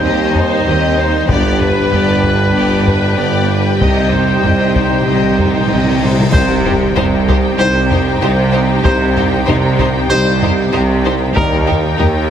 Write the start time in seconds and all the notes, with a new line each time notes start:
Already playing: G3 D#4 G4 C5 G5
0.01 D#2 C4 G4 D#5
0.33 D#4 C5, taiko low
0.65 D#2 C4 G4 D#5
0.97 D#4 C5
1.27 G1 G2 G3 B3 D4 G4 B4 D5 G5, taiko
1.60 D4 B4, taiko low
1.90 G1 G2 B3 G4 D5, taiko low
2.23 D4 B4, taiko
2.54 G1 G2 B3 G4 D5
2.85 D4 B4, taiko low
3.17 G1 G2 B3 G4 D5
3.48 D4 B4
3.79 C2 C3 C4 D#4 G4 C5 D#5, taiko, cymbal swell
3.88 C3
3.95 C3
4.02 C3
4.10 C3 D#4 C5, taiko low
4.18 C3
4.26 C3
4.33 C3
4.41 C2 C3 C4 G4 D#5, taiko low
4.48 C3
4.55 C3
4.63 C3
4.71 C3 D#4
4.75 C3 D#4 C5, taiko
4.85 C3
4.93 C3
5.01 C3 G4
5.06 C2 C3 C4 D#5
5.15 C3
5.31 C3
5.35 C3 D#4, taiko low
5.39 C5
5.46 C3
5.52 C3
5.60 C3
5.67 C2 C3 C4 G4 D#5
5.75 C3
5.83 C3
5.90 C3
5.96 C3 D#4
6.01 C3 D#4 C5
6.12 C3
6.19 C3
6.32 C2 C3 G3 D#4 G4 C5 G5, taiko, impact
6.65 D#4 G4 C5, taiko low
6.94 C2 C3 D#4 G4 C5, taiko low
7.28 D#4 G4 C5, taiko
7.58 C2 C3 G3 D#4 G4 C5
7.90 D#4 G4 C5, taiko low
8.21 C2 C3 D#4 G4 C5
8.52 D#4 G4 C5
8.83 C2 C3 G3 D#4 G4 C5, taiko
9.16 D#4 G4 C5, taiko low
9.47 C2 C3 D#4 G4 C5, taiko low
9.79 D#4 G4 C5, taiko
10.10 C2 C3 G3 D#4 G4 C5
10.41 D#4 G4 C5, taiko low
10.72 C2 C3 D#4 G4 C5
11.04 D#4 G4 C5
11.34 D#2 G3 D#4 G4 A#4 G5, taiko
11.66 D#4 G4 A#4, taiko low
11.97 D#2 D#4 G4 A#4, taiko low